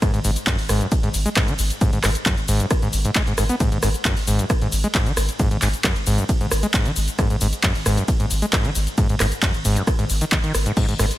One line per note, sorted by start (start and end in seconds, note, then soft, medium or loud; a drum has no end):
0.02 0.12 G#2 loud
0.02 kick loud
0.02 cross-stick medium
0.02 closed hi-hat medium
0.02 ride medium
0.02 shaker soft
0.14 0.24 G#1 medium
0.14 0.20 G#2 loud
0.14 closed hi-hat medium
0.14 shaker soft
0.24 0.36 G#1 loud
0.24 0.31 G#2 medium
0.24 open hi-hat loud
0.24 shaker medium
0.36 closed hi-hat medium
0.36 shaker soft
0.47 0.56 F#2 loud
0.47 kick loud
0.47 clap loud
0.47 closed hi-hat medium
0.47 ride medium
0.47 shaker soft
0.59 0.69 G#1 medium
0.59 open hi-hat medium
0.59 shaker soft
0.69 0.81 G#1 loud
0.69 0.82 G#2 loud
0.69 cross-stick medium
0.69 open hi-hat loud
0.69 shaker medium
0.81 0.87 F#2 loud
0.81 closed hi-hat medium
0.81 shaker soft
0.92 kick loud
0.92 closed hi-hat medium
0.92 ride medium
0.92 shaker soft
1.03 1.14 G#1 medium
1.03 1.09 G#2 loud
1.03 closed hi-hat medium
1.03 shaker soft
1.14 1.25 G#1 loud
1.14 open hi-hat loud
1.14 shaker medium
1.26 1.29 G#3 medium
1.26 closed hi-hat medium
1.26 shaker soft
1.36 1.49 G#2 medium
1.36 kick loud
1.36 cross-stick medium
1.36 clap loud
1.36 closed hi-hat medium
1.36 ride medium
1.36 shaker soft
1.48 1.58 G#1 medium
1.48 1.54 D#3 medium
1.48 closed hi-hat medium
1.48 shaker soft
1.59 1.70 G#1 loud
1.59 open hi-hat loud
1.59 shaker medium
1.70 closed hi-hat medium
1.70 shaker soft
1.81 1.91 G#2 loud
1.81 kick loud
1.81 closed hi-hat medium
1.81 ride medium
1.81 shaker soft
1.93 2.03 G#1 medium
1.93 1.99 G#2 loud
1.93 closed hi-hat medium
1.93 shaker soft
2.04 2.15 G#1 loud
2.04 2.10 G#2 medium
2.04 cross-stick loud
2.04 clap medium
2.04 open hi-hat loud
2.04 shaker medium
2.15 closed hi-hat medium
2.15 shaker soft
2.26 2.36 F#2 loud
2.26 kick loud
2.26 clap loud
2.26 closed hi-hat medium
2.26 ride medium
2.26 shaker soft
2.37 2.48 G#1 medium
2.37 closed hi-hat medium
2.37 shaker soft
2.48 2.60 G#1 loud
2.48 2.62 G#2 loud
2.48 open hi-hat loud
2.48 shaker medium
2.60 2.66 F#2 loud
2.60 closed hi-hat medium
2.60 shaker soft
2.71 kick loud
2.71 cross-stick loud
2.71 closed hi-hat medium
2.71 ride medium
2.71 shaker soft
2.82 2.93 G#1 medium
2.82 2.88 G#2 loud
2.82 closed hi-hat medium
2.82 shaker soft
2.93 3.04 G#1 loud
2.93 open hi-hat loud
2.93 shaker medium
3.05 3.11 G#2 medium
3.05 closed hi-hat medium
3.05 shaker soft
3.15 3.22 G#3 medium
3.15 kick loud
3.15 clap loud
3.15 closed hi-hat medium
3.15 ride medium
3.15 shaker soft
3.27 3.37 G#1 medium
3.27 3.33 G#2 loud
3.27 closed hi-hat medium
3.27 shaker soft
3.38 3.49 G#1 medium
3.38 3.44 G#2 medium
3.38 cross-stick loud
3.38 open hi-hat loud
3.38 shaker medium
3.49 3.55 B3 medium
3.49 closed hi-hat medium
3.49 shaker soft
3.60 3.70 G#2 loud
3.60 kick loud
3.60 closed hi-hat medium
3.60 ride medium
3.60 shaker soft
3.72 3.82 G#1 medium
3.72 3.78 G#2 loud
3.72 closed hi-hat soft
3.72 shaker soft
3.83 3.94 G#1 loud
3.83 3.89 G#2 medium
3.83 cross-stick loud
3.83 open hi-hat loud
3.83 shaker medium
3.94 closed hi-hat medium
3.94 shaker soft
4.05 4.15 F#2 loud
4.05 kick loud
4.05 clap loud
4.05 closed hi-hat medium
4.05 ride medium
4.05 shaker soft
4.17 4.27 G#1 medium
4.17 open hi-hat medium
4.17 shaker soft
4.27 4.39 G#1 loud
4.27 4.41 G#2 loud
4.27 open hi-hat loud
4.27 shaker medium
4.39 4.45 F#2 loud
4.39 closed hi-hat medium
4.39 shaker soft
4.50 kick loud
4.50 cross-stick loud
4.50 closed hi-hat medium
4.50 ride medium
4.50 shaker soft
4.61 4.72 G#1 medium
4.61 4.68 G#2 loud
4.61 closed hi-hat soft
4.61 shaker soft
4.72 4.84 G#1 loud
4.72 open hi-hat loud
4.72 shaker medium
4.84 4.88 G#3 medium
4.84 closed hi-hat medium
4.84 shaker soft
4.95 5.08 G#2 medium
4.95 kick loud
4.95 clap loud
4.95 closed hi-hat medium
4.95 ride medium
4.95 shaker soft
5.06 5.16 G#1 medium
5.06 5.12 D#3 medium
5.06 closed hi-hat medium
5.06 shaker soft
5.17 5.28 G#1 loud
5.17 cross-stick loud
5.17 open hi-hat loud
5.17 shaker medium
5.29 closed hi-hat medium
5.29 shaker soft
5.39 5.49 G#2 loud
5.39 kick loud
5.39 closed hi-hat medium
5.39 ride medium
5.39 shaker soft
5.51 5.61 G#1 medium
5.51 5.57 G#2 loud
5.51 closed hi-hat soft
5.51 shaker soft
5.62 5.73 G#1 loud
5.62 5.68 G#2 medium
5.62 clap medium
5.62 open hi-hat loud
5.62 shaker medium
5.74 closed hi-hat medium
5.74 shaker soft
5.84 5.94 F#2 loud
5.84 kick loud
5.84 cross-stick medium
5.84 clap loud
5.84 closed hi-hat medium
5.84 ride medium
5.84 shaker soft
5.96 6.06 G#1 medium
5.96 closed hi-hat medium
5.96 shaker soft
6.07 6.18 G#1 loud
6.07 6.20 G#2 loud
6.07 open hi-hat loud
6.07 shaker medium
6.18 6.24 F#2 loud
6.18 closed hi-hat medium
6.18 shaker soft
6.29 kick loud
6.29 closed hi-hat medium
6.29 ride medium
6.29 shaker soft
6.41 6.51 G#1 medium
6.41 6.47 G#2 loud
6.41 closed hi-hat soft
6.41 shaker soft
6.51 6.63 G#1 loud
6.51 cross-stick loud
6.51 open hi-hat loud
6.51 shaker medium
6.63 6.67 G#3 medium
6.63 closed hi-hat medium
6.63 shaker soft
6.74 6.87 G#2 medium
6.74 kick loud
6.74 clap loud
6.74 closed hi-hat medium
6.74 ride medium
6.74 shaker soft
6.85 6.96 G#1 medium
6.85 6.91 D#3 medium
6.85 closed hi-hat medium
6.85 shaker soft
6.96 7.08 G#1 loud
6.96 open hi-hat loud
6.96 shaker medium
7.08 closed hi-hat medium
7.08 shaker soft
7.19 7.28 G#2 loud
7.19 kick loud
7.19 cross-stick medium
7.19 closed hi-hat medium
7.19 ride medium
7.19 shaker soft
7.30 7.41 G#1 medium
7.30 7.36 G#2 loud
7.30 closed hi-hat medium
7.30 shaker soft
7.41 7.52 G#1 loud
7.41 7.47 G#2 medium
7.41 open hi-hat loud
7.41 shaker medium
7.53 closed hi-hat medium
7.53 shaker soft
7.63 7.73 F#2 loud
7.63 kick loud
7.63 clap loud
7.63 closed hi-hat medium
7.63 ride medium
7.63 shaker soft
7.75 7.85 G#1 medium
7.75 open hi-hat medium
7.75 shaker soft
7.86 7.97 G#1 loud
7.86 7.99 G#2 loud
7.86 cross-stick medium
7.86 open hi-hat loud
7.86 shaker medium
7.97 8.03 F#2 loud
7.97 closed hi-hat medium
7.97 shaker soft
8.08 kick loud
8.08 closed hi-hat medium
8.08 ride medium
8.08 shaker soft
8.20 8.30 G#1 medium
8.20 8.26 G#2 loud
8.20 closed hi-hat medium
8.20 shaker soft
8.31 8.42 G#1 loud
8.31 open hi-hat loud
8.31 shaker medium
8.42 8.46 G#3 medium
8.42 closed hi-hat medium
8.42 shaker soft
8.53 8.66 G#2 medium
8.53 kick loud
8.53 cross-stick medium
8.53 clap loud
8.53 closed hi-hat medium
8.53 ride medium
8.53 shaker soft
8.65 8.75 G#1 medium
8.65 8.70 D#3 medium
8.65 closed hi-hat medium
8.65 shaker soft
8.75 8.87 G#1 loud
8.75 open hi-hat loud
8.75 shaker medium
8.87 closed hi-hat medium
8.87 shaker soft
8.98 9.07 G#2 loud
8.98 kick loud
8.98 closed hi-hat medium
8.98 ride medium
8.98 shaker soft
9.09 9.20 G#1 medium
9.09 9.15 G#2 loud
9.09 closed hi-hat medium
9.09 shaker soft
9.20 9.31 G#1 loud
9.20 9.27 G#2 medium
9.20 cross-stick medium
9.20 clap medium
9.20 open hi-hat loud
9.20 shaker medium
9.32 closed hi-hat medium
9.32 shaker soft
9.43 9.52 F#2 loud
9.43 kick loud
9.43 clap loud
9.43 closed hi-hat medium
9.43 ride medium
9.43 shaker soft
9.54 9.64 G#1 medium
9.54 closed hi-hat medium
9.54 shaker soft
9.65 9.76 G#1 loud
9.65 9.78 G#2 loud
9.65 open hi-hat loud
9.65 shaker medium
9.76 9.82 F#2 loud
9.76 closed hi-hat medium
9.76 shaker soft
9.87 kick loud
9.87 cross-stick medium
9.87 closed hi-hat medium
9.87 ride medium
9.87 shaker soft
9.99 10.09 G#1 medium
9.99 10.05 G#2 loud
9.99 closed hi-hat medium
9.99 shaker soft
10.10 10.21 G#1 loud
10.10 open hi-hat loud
10.10 shaker medium
10.21 10.25 D#3 medium
10.21 closed hi-hat medium
10.21 shaker soft
10.32 10.38 D#3 medium
10.32 kick loud
10.32 clap loud
10.32 closed hi-hat medium
10.32 ride medium
10.32 shaker soft
10.44 10.54 G#1 medium
10.44 10.53 D#3 medium
10.44 closed hi-hat medium
10.44 shaker soft
10.54 10.66 G#1 loud
10.54 cross-stick medium
10.54 open hi-hat loud
10.54 shaker medium
10.66 10.72 G#2 medium
10.66 closed hi-hat medium
10.66 shaker soft
10.77 10.86 G#2 loud
10.77 kick loud
10.77 closed hi-hat medium
10.77 crash medium
10.77 ride medium
10.77 shaker soft
10.88 10.98 G#1 medium
10.88 10.94 G#2 loud
10.88 closed hi-hat medium
10.88 shaker soft
10.99 11.10 G#1 loud
10.99 11.06 G#2 medium
10.99 cross-stick medium
10.99 open hi-hat loud
10.99 shaker medium
11.11 closed hi-hat medium
11.11 shaker soft